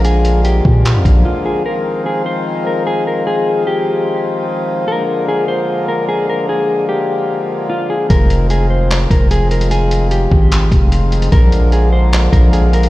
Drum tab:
HH |x-x-x---x-x-----|----------------|----------------|----------------|
CP |--------x-------|----------------|----------------|----------------|
BD |------o---o-----|----------------|----------------|----------------|

HH |----------------|x-x-x---x-x-x-xx|x-x-x---x-x-x-xx|x-x-x---x-x-x-xx|
CP |----------------|--------x-------|--------x-------|--------x-------|
BD |----------------|o---------o-----|------o---o-----|o---------o-----|